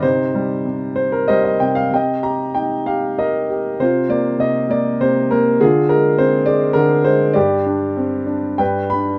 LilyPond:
<<
  \new Staff \with { instrumentName = "Grand piano" } { \time 3/4 \key c \minor \tempo 4 = 98 << { ees'2 c''16 r16 g''8 | ees''4. r4. | f'4. r4. | f'4. r4. |
g'2 b'4 | } \\ { c''4. c''16 bes'16 ees''8. f''16 | g''8 bes''8 g''8 f''8 ees''4 | c''8 d''8 ees''8 d''8 c''8 bes'8 | aes'8 bes'8 c''8 d''8 bes'8 c''8 |
d''2 g''8 b''8 | } >> }
  \new Staff \with { instrumentName = "Grand piano" } { \clef bass \time 3/4 \key c \minor c8 g8 c4 g8 c8 | c8 g'8 ees'8 g'8 bes'8 g'8 | c8 bes8 c8 bes8 c8 bes8 | d8 aes8 c'8 aes8 d8 aes8 |
g,8 d'8 c'8 d'8 g,8 d'8 | }
>>